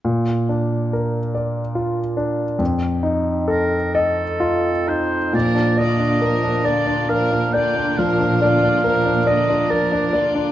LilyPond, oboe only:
\new Staff \with { instrumentName = "Oboe" } { \time 12/8 \key bes \major \tempo 4. = 46 r1 bes'8 a'4 c''8 | d''8 ees''4 d''8 f''8 g''8 f''8 f''4 ees''8 d''8 r8 | }